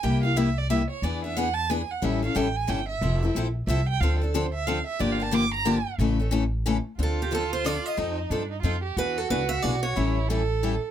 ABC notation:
X:1
M:3/4
L:1/16
Q:"Swing" 1/4=182
K:Dm
V:1 name="Violin"
g2 f2 e2 d2 e2 ^c2 | d2 e2 ^f2 a2 ^g2 f2 | e2 f2 g2 ^g2 =g2 e2- | e4 z4 e2 g2 |
f2 A2 c2 e2 f2 e2 | (3d2 f2 a2 d'2 b4 z2 | z12 | F12 |
_E4 D2 E2 F2 G2 | ^F12 | E4 A6 z2 |]
V:2 name="Steel-string acoustic guitar"
z12 | z12 | z12 | z12 |
z12 | z12 | z12 | A2 G2 A2 c2 d2 _e2- |
_e4 z8 | =B2 A2 B2 e2 d2 ^c2- | ^c4 z8 |]
V:3 name="Steel-string acoustic guitar"
[C,G,B,EG]2 [B,EG]2 [C,G,B,EG] z3 [C,G,B,EG] z3 | [E,=B,D^G]2 [B,DG]2 [E,B,DG] z3 [E,B,DG] z3 | [E,G,^CEA]2 [CEA]2 [E,G,CEA] z3 [E,G,CEA] z3 | [F,CEA]2 [CEA]2 [F,CEA] z3 [F,CEA] z3 |
[D,F,CDA]2 [CDA]2 [D,F,CDA] z3 [D,F,CDA] z3 | [D,F,B,DG]2 [B,DG]2 [D,F,B,DG] z3 [D,F,B,DG] z3 | [^C,E,A,^CA]2 [A,CA]2 [C,E,A,CA] z3 [C,E,A,CA] z3 | [D,F,CDA]2 z2 [D,F,CDA] z3 [D,F,CDA] z3 |
[F,C_EA]2 z2 [F,CEA] z3 [F,CEA] z3 | [E,=B,D^G]2 z2 [E,B,DG] z3 [E,B,DG] z3 | [E,G,^CEA]2 z2 [E,G,CEA] z3 [E,G,CEA] z3 |]
V:4 name="Upright bass" clef=bass
C,,12 | E,,12 | A,,,4 A,,,4 G,,,4 | F,,,4 B,,,4 C,,4 |
D,,12 | G,,,12 | A,,,12 | D,,12 |
F,,4 G,,4 F,,4 | E,,4 ^C,,4 =B,,,4 | A,,,12 |]